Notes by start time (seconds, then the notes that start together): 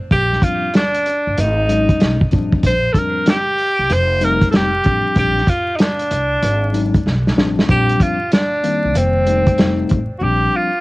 0.11 A#1 G4, kick, closed hi-hat
0.33 snare
0.42 F3 G3 C4 D4 F4, kick, closed hi-hat
0.74 D4, snare, closed hi-hat
0.94 closed hi-hat
1.06 closed hi-hat
1.27 G1
1.37 G#1 D#4, closed hi-hat
1.68 F#3 G#3 C#4 D#4, closed hi-hat
1.89 kick, closed hi-hat
2.00 B1, snare, closed hi-hat
2.21 kick
2.31 A1 F3 G3 C4 D4, kick, closed hi-hat
2.53 kick
2.63 A#1 C5, kick, closed hi-hat
2.93 F3 G3 C4 D4 A4, kick, closed hi-hat
2.98 A#4
3.26 G4, snare, closed hi-hat
3.58 open hi-hat
3.79 C2
3.90 F1 C5, closed hi-hat
4.21 G3 A3 C4 D#4 A#4, closed hi-hat
4.41 kick, closed hi-hat
4.51 F1 A4, snare, closed hi-hat
4.56 G4
4.84 A1 F3 G3 C4 D4, kick, closed hi-hat
5.16 A#1 F3 G3 C4 D4 G4, kick, closed hi-hat
5.38 snare
5.47 F4, kick, closed hi-hat
5.76 D#4, snare, closed hi-hat
5.81 D4
5.99 closed hi-hat
6.11 C2, closed hi-hat
6.43 G#1, closed hi-hat
6.73 F#3 G#3 C#4 D#4, closed hi-hat
6.94 kick, closed hi-hat
7.06 B1, snare
7.27 snare
7.36 A1 F3 G3 C4 D4, snare
7.59 snare
7.68 A#1 F3 G3 C4 D4 G4, kick, closed hi-hat
7.89 closed hi-hat
8.00 F4, kick, closed hi-hat
8.32 D4, snare, closed hi-hat
8.63 D#3 G3 A#3 C4, closed hi-hat
8.84 C2
8.95 F1 C4, closed hi-hat
9.27 G3 A3 C4 D#4, closed hi-hat
9.47 kick, closed hi-hat
9.58 F1 G3 A3 C4 D#4, snare, closed hi-hat
9.89 A1, kick, closed hi-hat
10.18 A#1 F3 G3 C4 D4 F#4
10.24 G4
10.56 F4